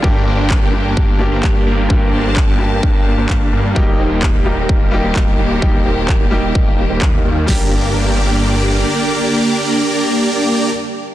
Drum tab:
HH |--------|--------|--------|--------|
CP |--x---x-|--x---x-|--x---x-|--x---x-|
SD |--------|--------|--------|--------|
BD |o-o-o-o-|o-o-o-o-|o-o-o-o-|o-o-o-o-|

HH |o-------|--------|
CP |--------|--------|
SD |o-------|--------|
BD |o-------|--------|